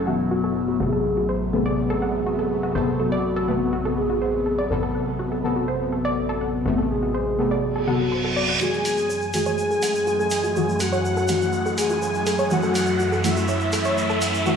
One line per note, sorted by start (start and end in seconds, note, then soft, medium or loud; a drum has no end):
0.00 0.78 F#1 medium
0.00 8.66 F#2 medium
0.00 0.76 F#3 medium
0.00 8.66 F#3 medium
0.00 0.76 A3 medium
0.00 0.76 E4 medium
0.07 0.29 E3 medium
0.07 0.29 A3 medium
0.07 0.82 B3 medium
0.07 0.29 F#4 medium
0.07 0.17 F#5 medium
0.31 0.41 F#4 medium
0.44 0.53 A4 medium
0.68 0.78 F#4 medium
0.80 2.73 A1 medium
0.80 1.50 C3 medium
0.80 8.57 C3 medium
0.80 4.66 A3 medium
0.80 1.50 A3 loud
0.80 8.57 B3 medium
0.80 1.50 B3 medium
0.80 0.90 F#4 medium
0.80 1.44 G#4 loud
0.93 1.02 A4 medium
1.17 1.26 F#4 medium
1.29 1.39 C5 medium
1.53 2.72 C3 medium
1.53 2.72 A3 medium
1.53 2.72 B3 medium
1.53 2.90 G#4 loud
1.53 1.59 A4 medium
1.66 1.75 D5 loud
1.90 2.00 A4 loud
2.02 2.12 F#5 medium
2.26 2.36 F#4 medium
2.39 2.48 A4 medium
2.63 2.73 F#4 medium
2.75 4.68 A1 medium
2.75 3.46 C3 medium
2.75 3.46 B3 medium
2.75 3.46 A4 loud
2.75 2.85 C5 medium
3.00 3.88 F#4 loud
3.00 3.06 A4 medium
3.12 3.22 D5 loud
3.36 3.46 A4 loud
3.48 4.68 C3 medium
3.48 4.68 A3 medium
3.48 4.68 B3 medium
3.48 3.58 F#5 medium
3.73 3.83 F#4 medium
3.85 3.95 A4 medium
3.97 4.61 G#4 medium
4.10 4.19 F#4 medium
4.22 4.32 C5 medium
4.46 4.52 A4 medium
4.58 4.68 D5 loud
4.70 6.63 A1 medium
4.70 5.41 C3 medium
4.70 5.41 B3 medium
4.70 5.34 A4 loud
4.70 5.41 A4 loud
4.83 4.92 A4 loud
4.95 5.05 F#5 medium
5.19 5.29 F#4 medium
5.32 5.41 A4 medium
5.44 6.63 C3 medium
5.44 6.63 B3 medium
5.44 6.80 A4 loud
5.44 6.63 A4 medium
5.56 5.65 F#4 medium
5.68 5.78 C5 medium
5.92 5.98 A4 medium
6.05 6.14 D5 loud
6.29 6.39 A4 loud
6.41 6.51 F#5 medium
6.65 8.58 A1 medium
6.65 7.36 C3 medium
6.65 7.36 A3 loud
6.65 7.36 B3 medium
6.65 6.75 F#4 medium
6.78 6.88 A4 medium
6.90 7.89 G#4 loud
7.02 7.12 F#4 medium
7.14 7.24 C5 medium
7.39 7.85 C3 medium
7.39 7.85 A3 medium
7.39 7.85 B3 medium
7.39 7.45 A4 medium
7.51 7.61 D5 loud
7.63 reverse cymbal medium
7.76 7.85 A4 loud
7.87 8.09 C3 medium
7.87 8.09 B3 medium
7.87 8.51 F#4 loud
7.87 8.09 A4 medium
7.87 7.99 F#5 medium
8.12 8.22 C5 medium
8.24 8.34 A4 medium
8.36 8.46 D5 loud
8.49 8.54 F#5 medium
8.60 14.56 F#2 medium
8.60 14.56 E3 medium
8.60 9.31 E3 medium
8.60 14.56 A3 medium
8.60 9.31 A3 medium
8.60 9.31 F#4 loud
8.60 8.71 F#4 medium
8.60 9.24 G#4 loud
8.60 9.24 G#5 loud
8.60 riser medium
8.60 shaker soft
8.73 8.83 A4 medium
8.73 shaker soft
8.85 open hi-hat medium
8.85 shaker medium
8.97 9.07 F#4 medium
8.97 shaker soft
9.09 9.19 C#5 medium
9.09 shaker soft
9.21 shaker soft
9.33 10.53 E3 medium
9.33 10.53 A3 medium
9.33 10.53 F#4 medium
9.33 10.82 G#4 loud
9.33 9.40 A4 medium
9.33 10.80 G#5 loud
9.33 open hi-hat medium
9.33 shaker medium
9.46 9.56 C#5 loud
9.46 shaker soft
9.58 shaker soft
9.71 9.80 A4 loud
9.71 shaker soft
9.82 9.92 F#5 medium
9.82 open hi-hat medium
9.82 shaker medium
9.95 shaker soft
10.07 10.17 F#4 medium
10.07 shaker soft
10.19 10.29 A4 medium
10.19 shaker soft
10.30 open hi-hat medium
10.30 shaker medium
10.44 10.53 F#4 medium
10.44 shaker soft
10.56 11.26 E3 medium
10.56 11.26 A3 medium
10.56 11.26 F#4 loud
10.56 10.66 C#5 medium
10.56 shaker medium
10.69 shaker soft
10.80 11.68 F#4 loud
10.80 10.86 A4 medium
10.80 11.68 F#5 loud
10.80 open hi-hat loud
10.80 shaker medium
10.93 11.02 C#5 loud
10.93 shaker soft
11.05 shaker soft
11.17 11.26 A4 loud
11.17 shaker soft
11.28 12.48 E3 medium
11.28 12.48 A3 medium
11.28 12.48 F#4 medium
11.28 11.39 F#5 medium
11.28 open hi-hat medium
11.28 shaker medium
11.42 shaker soft
11.53 11.63 F#4 medium
11.53 shaker medium
11.66 11.75 A4 medium
11.66 shaker soft
11.78 12.52 G#4 loud
11.78 12.51 G#5 loud
11.78 open hi-hat loud
11.78 shaker medium
11.89 12.00 F#4 medium
11.89 shaker soft
12.02 12.12 C#5 medium
12.02 shaker soft
12.14 shaker soft
12.26 12.32 A4 medium
12.26 open hi-hat medium
12.26 shaker medium
12.38 12.48 C#5 medium
12.38 shaker soft
12.50 13.21 E3 medium
12.50 13.21 A3 medium
12.50 13.15 F#4 loud
12.50 13.21 F#4 loud
12.50 13.15 F#5 loud
12.50 shaker medium
12.63 12.73 A4 loud
12.63 shaker soft
12.75 12.85 F#5 medium
12.75 open hi-hat loud
12.75 shaker loud
12.86 shaker soft
12.99 13.10 F#4 medium
12.99 shaker medium
13.12 13.22 A4 medium
13.12 shaker soft
13.24 14.43 E3 medium
13.24 14.43 A3 medium
13.24 14.56 E4 loud
13.24 14.43 F#4 medium
13.24 14.56 E5 loud
13.24 open hi-hat medium
13.24 shaker medium
13.37 13.46 F#4 medium
13.37 shaker soft
13.48 13.58 C#5 medium
13.48 shaker soft
13.60 shaker soft
13.72 13.79 A4 medium
13.72 open hi-hat loud
13.72 shaker loud
13.84 13.95 C#5 loud
13.84 shaker soft
13.97 shaker medium
14.10 14.19 A4 loud
14.10 shaker soft
14.21 14.31 F#5 medium
14.21 open hi-hat medium
14.21 shaker medium
14.34 shaker soft
14.46 14.56 E3 loud
14.46 14.56 A3 medium
14.46 14.56 F#4 medium
14.46 14.56 F#4 loud
14.46 shaker soft